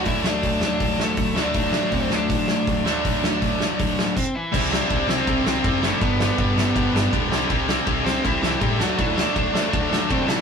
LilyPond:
<<
  \new Staff \with { instrumentName = "Overdriven electric guitar" } { \time 4/4 \key d \mixolydian \tempo 4 = 161 <e' e''>8 <d' d''>4 <d' d''>4 <a a'>4 <d' d''>8~ | <d' d''>4 <c' c''>8 <d' d''>2~ <d' d''>8~ | <d' d''>2. <c' c''>8 <e e'>8~ | <e e'>8 <d' d''>4 <c' c''>4 <c' c''>4 <a a'>8 |
<b b'>2. r4 | r4. <c' c''>8 <e e'>8 <e e'>8 <g g'>8 <fis fis'>8 | <e e'>8 <d' d''>8 <d' d''>2 <c' c''>8 <e e'>8 | }
  \new Staff \with { instrumentName = "Distorted electric guitar" } { \time 4/4 \key d \mixolydian <d fis a d'>2.~ <d fis a d'>8 <d fis a d'>8~ | <d fis a d'>2.~ <d fis a d'>8 <d fis a d'>8~ | <d fis a d'>2. r4 | <c g c' e' g'>8 <c g c' e' g'>8 <c g c' e' g'>8 <c g c' e' g'>8 <c g c' e' g'>8 <c g c' e' g'>8 <c g c' e' g'>8 <c g c' e' g'>8 |
<g, d g b d' g'>8 <g, d g b d' g'>8 <g, d g b d' g'>8 <g, d g b d' g'>8 <g, d g b d' g'>8 <g, d g b d' g'>8 <g, d g b d' g'>8 <c g c' e' g'>8 | <c g c' e' g'>8 <c g c' e' g'>8 <c g c' e' g'>8 <c g c' e' g'>8 <c g c' e' g'>8 <c g c' e' g'>8 <c g c' e' g'>8 <d fis a d' fis'>8 | <d fis a d' fis'>8 <d fis a d' fis'>8 <d fis a d' fis'>8 <d fis a d' fis'>8 <d fis a d' fis'>8 <d fis a d' fis'>8 <d fis a d' fis'>8 <d fis a d' fis'>8 | }
  \new Staff \with { instrumentName = "Distorted electric guitar" } { \clef bass \time 4/4 \key d \mixolydian <d a d'>2.~ <d a d'>8 <d a d'>8~ | <d a d'>2.~ <d a d'>8 <d a d'>8~ | <d a d'>2. r4 | <c g c'>8 <c g c'>8 <c g c'>8 <c g c'>8 <c g c'>8 <c g c'>8 <c g c'>8 <c g c'>8 |
<g, d g>8 <g, d g>8 <g, d g>8 <g, d g>8 <g, d g>8 <g, d g>8 <g, d g>8 <c g c'>8 | <c g c'>8 <c g c'>8 <c g c'>8 <c g c'>8 <c g c'>8 <c g c'>8 <c g c'>8 <d a d'>8 | <d a d'>8 <d a d'>8 <d a d'>8 <d a d'>8 <d a d'>8 <d a d'>8 <d a d'>8 <d a d'>8 | }
  \new Staff \with { instrumentName = "Picked electric bass" } { \clef bass \time 4/4 \key d \mixolydian d,8 d,8 d,8 d,8 d,8 d,8 d,8 d,8 | d,8 d,8 d,8 d,8 d4 d,4 | d,8 d,8 d,8 d,8 d,8 d,8 r4 | c,4 c,8 c,8 c,8 c,8 fis,,4 |
g,,4 g,,8 g,,8 g,,8 g,,8 d,8 c,8 | c,4 c,8 c,8 c,8 c,8 a,8 d,8 | d,4 d,8 d,8 d,8 d,8 c4 | }
  \new DrumStaff \with { instrumentName = "Drums" } \drummode { \time 4/4 <hho bd>8 sn8 <hho bd>8 sn8 <hho bd>8 sn8 <hho bd>8 sn8 | <hho bd>8 sn8 <hho bd>8 sn8 <hho bd>8 sn8 <hho bd>8 sn8 | <hho bd>8 sn8 <hho bd>8 sn8 <hho bd>8 sn8 <cymc bd>4 | <cymc bd>8 sn8 <bd cymr>8 sn8 <bd cymr>8 sn8 <bd cymr>8 sn8 |
<bd cymr>8 sn8 <bd cymr>8 sn8 <bd cymr>8 sn8 <bd cymr>8 sn8 | <bd cymr>8 sn8 <bd cymr>8 sn8 <bd cymr>8 sn8 <bd cymr>8 sn8 | <bd cymr>8 sn8 <bd cymr>8 sn8 <bd cymr>8 sn8 <bd cymr>8 sn8 | }
>>